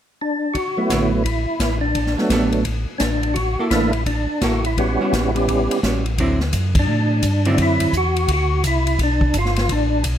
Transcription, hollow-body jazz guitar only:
0.91 D3 F#3 B3 E4
2.31 G3 B3 F#4 A4
3.59 A#3 E4 A4
4.43 A#3 E4 A4
5.01 G3 C#4 F#4
5.84 G3 C#4 F#4
6.20 D3 F#3 C4 E4
7.46 D3 F#3 C4 E4

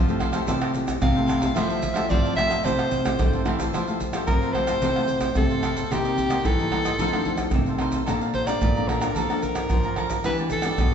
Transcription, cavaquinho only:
0.08 A4 C5 F5
0.19 E4 A4 C5 F5
0.33 A4 C5 F5
0.47 E4 A4 C5 F5
0.61 A4 C5 F5
0.73 muted cavaquinho stroke
1.15 A4 C5 F5
1.26 E4 A4 C5 F5
1.40 A4 C5 F5
1.54 E4 A4 C5 F5
1.69 A4 C5 F5
1.82 muted cavaquinho stroke
1.94 A4 C5 F5
2.23 A4 C5 F5
2.35 E4 A4 C5 F5
2.48 A4 C5 F5
2.63 E4 A4 C5 F5
2.78 A4 C5 F5
2.91 muted cavaquinho stroke
3.33 A4 C5 F5
3.46 E4 A4 C5 F5
3.59 A4 C5 F5
3.74 E4 A4 C5 F5
3.88 A4 C5 F5
4.01 muted cavaquinho stroke
4.15 A4 C5 F5
4.42 A4 C5 F5
4.54 E4 A4 C5 F5
4.67 A4 C5 F5
4.83 E4 A4 C5 F5
4.96 A4 C5 F5
5.09 muted cavaquinho stroke
5.51 A4 C5 F5
5.63 E4 A4 C5 F5
5.76 A4 C5 F5
5.91 D#4 A#4 C5 D#5
6.05 A#4 C5 D#5
6.18 muted cavaquinho stroke
6.30 A#4 C5 D#5
6.59 A#4 C5 D#5
6.71 D#4 A#4 C5 D#5
6.85 A#4 C5 D#5
7.00 D#4 A4 C5 F5
7.14 A4 C5 F5
7.27 muted cavaquinho stroke
7.68 A4 C5 F5
7.80 D#4 A4 C5 F5
7.93 A4 C5 F5
8.06 A4 D5 F5 A#5
8.21 D5 F5 A#5
8.34 muted cavaquinho stroke
8.47 D5 F5 A#5
8.77 D5 F5 A#5
8.88 A4 D5 F5 A#5
9.01 D5 F5 A#5
9.15 A4 D5 F5 A#5
9.30 D5 F5 A#5
9.43 muted cavaquinho stroke
9.85 D5 F5 A#5
9.97 A4 D5 F5 A#5
10.10 D5 F5 A#5
10.26 E4 G4 B4 D5
10.39 G4 B4 D5
10.52 muted cavaquinho stroke
10.65 G4 B4 D5

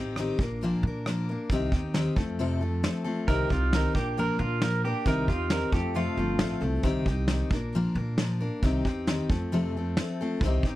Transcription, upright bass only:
Already playing: A1
0.39 A#1
0.83 A#2
1.49 C2
1.72 D#2
2.17 F2
3.28 C2
3.51 C2
3.95 A#1
4.39 A#2
5.06 C2
5.28 E2
5.72 F2
6.17 G1
6.40 A1
6.62 C2
6.83 C2
7.06 C2
7.51 A#1
7.95 A#2
8.63 C2
8.85 E2
9.29 F2
10.41 C2
10.63 A1

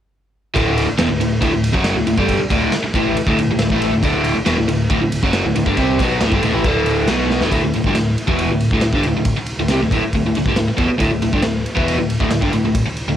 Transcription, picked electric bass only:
0.56 D1
0.88 muted picked electric bass stroke
0.99 E1
1.10 D1
1.19 D1
1.42 D1
1.53 D1
1.74 F#1
1.95 D1
2.05 D1
2.18 G1
2.39 muted picked electric bass stroke
2.51 D1
2.71 muted picked electric bass stroke
2.83 muted picked electric bass stroke
2.94 A1
3.15 muted picked electric bass stroke
3.26 D1
3.38 D1
3.48 D1
3.60 D1
3.71 A1
3.92 D1
4.03 D1
4.37 muted picked electric bass stroke
4.46 E1
4.57 D1
4.68 D1
4.90 D1
5.01 D1
5.23 F#1
5.44 D1
5.55 D1
5.66 G1
5.77 C2
5.99 B1
6.19 D1
6.32 G1
6.42 D1
6.53 A1
6.65 D1
7.07 B1
7.40 D1
7.52 D1
7.61 D1
7.73 D1
7.85 G1
7.94 D1
8.28 E1
8.49 D1
8.71 D1
8.83 D1
8.93 G1
9.04 D1
9.14 D1
9.36 muted picked electric bass stroke
9.58 D1
9.69 C2
9.80 D1
9.91 D1
10.03 muted picked electric bass stroke
10.13 D1
10.25 D1
10.36 D1
10.46 G1
10.58 D1
10.69 muted picked electric bass stroke
10.79 E1
10.90 muted picked electric bass stroke
11.00 D1
11.12 D1
11.22 D1
11.33 G1
11.44 D1
11.77 E1
11.98 D1
12.20 D1
12.32 D1
12.42 G1
12.53 D1
12.63 D1
12.85 muted picked electric bass stroke
13.06 D1

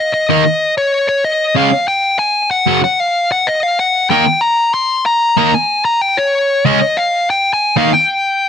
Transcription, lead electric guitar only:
0.00 D#5
0.14 D#5
0.30 D#5
0.78 C#5
1.09 C#5
1.25 D#5
1.56 F5
1.88 G5
2.19 G#5
2.51 F#5
2.84 F#5
3.00 F5
3.32 F#5
3.47 D#5
3.63 F5
3.79 F#5
4.10 G5
4.41 A#5
4.74 C6
5.06 A#5
5.38 A#5
5.54 G#5
5.85 A#5
6.01 G5
6.17 C#5
6.66 D#5
6.97 F5
7.30 G5
7.53 G#5
7.77 F5
7.93 G5

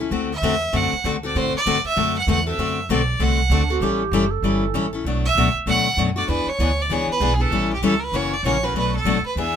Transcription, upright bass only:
0.11 D2
0.42 E2
0.73 F#2
0.93 muted upright bass stroke
1.04 D2
1.35 A2
1.53 muted upright bass stroke
1.66 G2
1.84 muted upright bass stroke
1.97 F#2
2.27 E2
2.58 F#2
2.89 B1
3.19 C2
3.49 D2
3.81 A1
4.11 F#1
4.42 G1
4.74 A1
5.05 B1
5.35 C#2
5.54 muted upright bass stroke
5.66 D2
5.97 F#2
6.28 E2
6.46 muted upright bass stroke
6.59 D2
6.90 C#2
7.08 muted upright bass stroke
7.20 B1
7.51 A1
7.82 C#2
8.12 F#1
8.43 A#1
8.74 B1
9.04 A1
9.23 muted upright bass stroke
9.35 E2

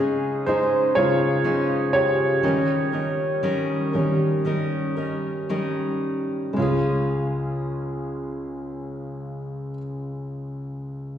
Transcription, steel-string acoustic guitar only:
0.00 C#4 D#4 G#4
0.47 G#3 C#4 D#4 G#4
0.95 C#4 D#4 G#4
1.44 C#3 G#3 C#4 D#4 G#4
2.43 D#3 G3 C#4 D#4 A#4
2.92 C#4 D#4 A#4
3.43 D#3 G3 C#4 D#4 A#4
3.93 C#4 D#4 A#4
4.45 G3 C#4 D#4 A#4
4.97 C#4 D#4 A#4
5.49 D#3 G3 C#4 D#4 A#4
6.53 C#3 G#3
6.59 C#4 F4
6.64 G#4

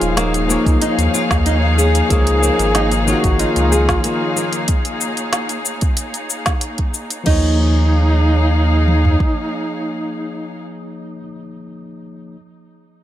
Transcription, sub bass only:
0.02 D#1
0.66 C#2
0.98 D#2
1.31 D#2
2.11 C#2
2.59 G#1
3.24 G#1
3.56 C#2
3.89 G#1
7.27 D#2

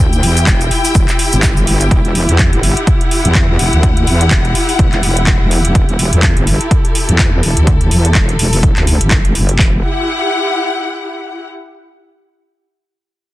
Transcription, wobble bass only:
Already playing: D2
0.23 E2
0.47 E1
0.95 E1
1.33 G1
1.67 G1
1.91 E1
2.29 E2
2.53 G1
3.25 E2
3.59 E1
3.73 D2
4.07 E2
4.31 E1
4.79 E1
5.03 E1
5.41 E1
5.75 E1
6.13 E2
6.37 G1
7.09 E2
7.43 E1
7.57 D2
7.91 E2
8.15 E1
8.39 E1
8.77 D2
9.01 G1
9.35 F#1
9.59 E1

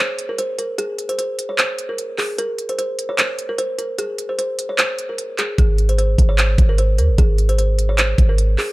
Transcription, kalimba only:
0.00 C5
0.29 A#4
0.38 C5
0.58 A#4
0.78 G#4
1.09 C5
1.18 C5
1.49 C#5
1.58 C5
1.89 A#4
2.18 G#4
2.38 A#4
2.69 C5
2.78 C5
3.09 C#5
3.18 C5
3.49 A#4
3.58 C5
3.78 A#4
3.98 G#4
4.29 C5
4.39 C5
4.69 C#5
4.78 C5
5.09 A#4
5.38 G#4
5.58 G#4
5.89 C5
5.98 C5
6.29 C#5
6.38 C5
6.69 A#4
6.78 C5
6.98 A#4
7.18 G#4
7.49 C5
7.58 C5
7.89 C#5
7.98 C5
8.29 A#4
8.59 G#4

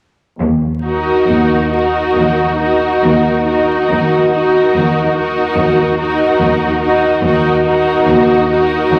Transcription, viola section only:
0.84 D#4
1.72 D#4
2.59 D#4
3.48 D#4
4.34 D#4
5.18 D#4
5.98 D#4
6.82 D#4
7.24 D#4
7.66 D#4
8.50 D#4

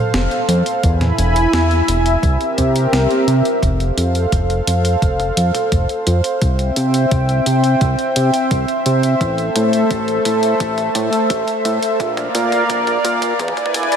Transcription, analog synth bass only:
0.14 F1
0.48 F2
0.83 E2
1.18 E1
1.53 E2
1.88 E1
2.23 C2
2.58 C3
2.93 C2
3.27 C3
3.62 F1
3.97 F2
4.32 F1
4.67 F2
5.02 F1
5.37 F2
5.72 F1
6.07 F2
6.42 C2
6.77 C3
7.12 C2
7.46 C3
7.81 C2
8.16 C3
8.51 C2
8.86 C3
9.21 A1
9.56 A2
9.91 A1
10.26 A2
10.60 A1
10.95 A2
11.30 A1
11.65 A2
12.00 A#1
12.35 A#2
12.70 A#1
13.05 A#2
13.39 E2
13.74 E1

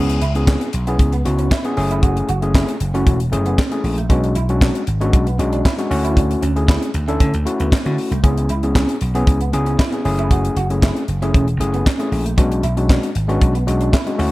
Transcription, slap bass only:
Already playing: C#2
0.22 C#2
0.74 B1
0.99 C#2
1.26 C#2
1.77 F#1
2.29 F#1
2.81 F#1
3.07 E1
3.32 F#1
3.84 A#1
4.10 B1
4.36 B1
4.88 G#1
5.13 B1
5.39 B1
5.91 D2
6.43 D2
6.94 D2
7.20 D3
7.34 D2
7.60 D2
7.86 D3
8.11 C2
8.24 C#2
8.50 C#2
9.01 B1
9.27 C#2
9.53 C#2
10.05 F#1
10.56 F#1
11.08 F#1
11.34 E1
11.60 F#1
12.12 A#1
12.38 B1
12.64 B1
13.15 G#1
13.42 B1
13.68 B1
14.19 D2

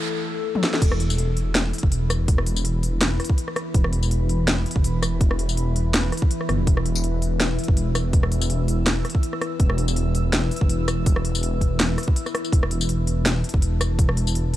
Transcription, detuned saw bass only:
0.82 E1
1.83 F#1
1.91 E1
2.28 E1
3.75 E1
4.76 F#1
4.84 E1
5.21 E1
6.49 G1
6.59 E1
6.67 E1
7.68 F#1
7.77 E1
8.13 E1
9.60 E1
10.61 F#1
10.70 E1
11.06 E1
12.53 E1
13.54 F#1
13.62 E1
13.99 E1

